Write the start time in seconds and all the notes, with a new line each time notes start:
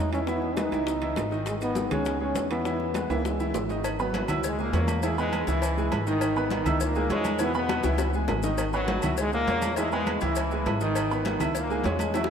Already playing: E2 D#4
0.13 E3 C#4 E4 E5, high conga, high timbale, maracas
0.27 E3 B3 E4 E5, high bongo, high conga, maracas
0.42 high bongo, high conga
0.57 G#3 D#4 G#4 B4, high bongo, high conga, high timbale, low timbale, maracas
0.72 C#2 E3 E4 E5, high bongo, high conga, high timbale, maracas
0.87 high bongo, high conga, maracas
1.02 E3 E4 E5, high conga, high timbale
1.16 G#1, high bongo, low bongo, high conga, high timbale, low timbale, maracas
1.31 D#3 D#4 D#5, high bongo, high conga, maracas
1.46 G#3, high bongo, high conga, high timbale, maracas
1.61 D#3 B3 D#4 D#5, high conga, high timbale, maracas
1.75 high bongo, high conga, low timbale, maracas
1.91 C#2 G#3 C#4 G#4 C#5, high conga, low conga, high timbale, maracas
2.05 high bongo, high conga, maracas
2.21 G#3 C#4 G#4 C#5, high conga
2.35 E2, high bongo, low bongo, high conga, high timbale, low timbale, maracas
2.50 E3 B3 E4 E5, high conga, high timbale, maracas
2.65 E3 E4 E5, high bongo, high conga, maracas
2.79 high bongo, high conga
2.94 G#3 G#4 B4, high bongo, high conga, high timbale, low timbale, maracas
3.09 C#2 E3 A#3 E4 E5, high bongo, high conga, high timbale, maracas
3.25 G#3, high bongo, high conga, low timbale, maracas
3.40 E3 E4 E5, high conga, maracas
3.54 G#1, high bongo, low bongo, low timbale, maracas
3.69 D#3 D#4 D#5, high bongo, high conga, low timbale, maracas
3.84 D#3 D#4, cowbell, high conga, low agogo, maracas
3.99 F#2 F#3 B3 B4 B5, high conga, maracas
4.14 cowbell, high conga, low timbale, low agogo, maracas
4.28 C#2 E4 E5 E6, cowbell, high conga, low conga, low agogo, maracas
4.44 G#2 G#3, cowbell, high conga, maracas
4.58 A#2 G#3 A#3 G#4 G#5, high conga, maracas
4.73 E2 C#4 C#5 C#6, cowbell, high conga, low timbale, low agogo, maracas
4.87 cowbell, high conga, low agogo, maracas
5.02 G#2 E3 G#3 E4 E5, cowbell, high conga, low agogo, maracas
5.17 G#2 G#3 B3 B4 B5, high conga, maracas
5.32 cowbell, high conga, low timbale, low agogo, maracas
5.47 C#2 E3 E4 E5, cowbell, high conga, maracas
5.62 cowbell, high conga, low agogo, maracas
5.77 G#3 G#4 G#5, high conga, maracas
5.92 G#1, cowbell, high conga, low timbale, low agogo, maracas
6.07 D#3 D#4 D#5, high conga, maracas
6.21 cowbell, high conga, low agogo, maracas
6.36 B3 B4 B5, high conga, maracas
6.50 D#3 D#4, cowbell, high conga, low timbale, low agogo, maracas
6.65 C#2 E4 E5 E6, cowbell, high conga, low conga, low agogo, maracas
6.80 A#2 A#3, cowbell, high conga, maracas
6.95 G#3 G#4 G#5, high conga, maracas
7.10 E2 G#2 G#3 C#4 C#5 C#6, cowbell, high conga, low timbale, low agogo, maracas
7.24 cowbell, high conga, low agogo, maracas
7.39 B2 E3 B3 E4 E5, cowbell, high conga, low agogo, maracas
7.54 B2 B3 B4 B5, high conga, maracas
7.69 cowbell, high bongo, high conga, low timbale, low agogo, maracas
7.83 C#2 E3 E4 E5, cowbell, high bongo, high conga, maracas
7.98 cowbell, high bongo, high conga, low agogo, maracas
8.14 G#3 G#4 G#5, high conga, maracas
8.28 G#1, cowbell, low bongo, high conga, low timbale, low agogo, maracas
8.43 D#3 D#4 D#5, low bongo, high conga, maracas
8.58 D#3 D#4, cowbell, high conga, low agogo, maracas
8.73 F#2 F#3 B3 B4 B5, high conga, maracas
8.88 cowbell, high conga, low timbale, low agogo, maracas
9.02 C#2 E4 E5 E6, cowbell, high conga, low conga, low agogo, maracas
9.17 G#2 G#3, cowbell, high conga, maracas
9.32 A#2 G#3 A#3 G#4 G#5, high conga, maracas
9.47 E2 C#4 C#5 C#6, cowbell, high conga, low timbale, low agogo, maracas
9.62 cowbell, high conga, low agogo, maracas
9.76 G#2 E3 G#3 E4 E5, cowbell, high conga, low agogo, maracas
9.92 G#2 G#3 B3 B4 B5, high conga, maracas
10.06 cowbell, high conga, low timbale, low agogo, maracas
10.21 C#2 E3 E4 E5, cowbell, high conga, maracas
10.36 cowbell, high conga, low agogo, maracas
10.51 G#3 G#4 G#5, high conga, maracas
10.66 G#1, cowbell, high conga, low timbale, low agogo, maracas
10.81 D#3 D#4 D#5, high conga, maracas
10.96 cowbell, high conga, low agogo, maracas
11.11 B3 B4 B5, high conga, maracas
11.25 D#3 D#4, cowbell, high conga, low timbale, low agogo, maracas
11.40 C#2 E4 E5 E6, cowbell, high conga, low conga, low agogo, maracas
11.55 A#2 A#3, cowbell, high conga, maracas
11.69 G#3 G#4 G#5, high conga, maracas
11.84 E2 G#2 G#3 C#4 C#5 C#6, cowbell, high conga, low timbale, low agogo, maracas
11.99 cowbell, high conga, low agogo, maracas
12.14 F#2 E3 F#3 E4 E5, cowbell, high bongo, high conga, low agogo, maracas
12.24 high bongo